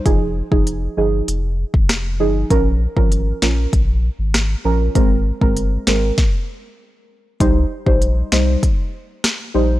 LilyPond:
<<
  \new Staff \with { instrumentName = "Synth stab" } { \time 4/4 \key c \phrygian \tempo 4 = 98 <f ees' aes'>16 r8 <f ees' aes'>8. <f ees' aes'>8 r4. <f ees' aes'>8 | <f des' bes'>16 r8 <f des' bes'>8. <f des' bes'>8 r4. <f des' bes'>8 | <aes c' bes'>16 r8 <aes c' bes'>8. <aes c' bes'>8 r2 | <g ees' c''>16 r8 <g ees' c''>8. <g ees' c''>8 r4. <g ees' c''>8 | }
  \new Staff \with { instrumentName = "Sub bass" } { \clef bass \time 4/4 \key c \phrygian f,,8. f,,8. g,,8 f,,8. f,,8. g,,8 | bes,,8. aes,,8. bes,,8 bes,,8. aes,,8. bes,,8 | aes,,8. g,,8. aes,,8 r2 | c,8 r16 bes,,8. c,8 r4. bes,,8 | }
  \new DrumStaff \with { instrumentName = "Drums" } \drummode { \time 4/4 <hh bd>8. bd16 hh4 hh8. bd16 <hh ss sn>4 | <hh bd>8. bd16 hh8 sn8 <hh bd>4 <hh ss sn>4 | <hh bd>8. bd16 hh8 sn8 <bd sn>4 r4 | <hh bd>8. bd16 hh8 sn8 <hh bd>4 <hh ss sn>4 | }
>>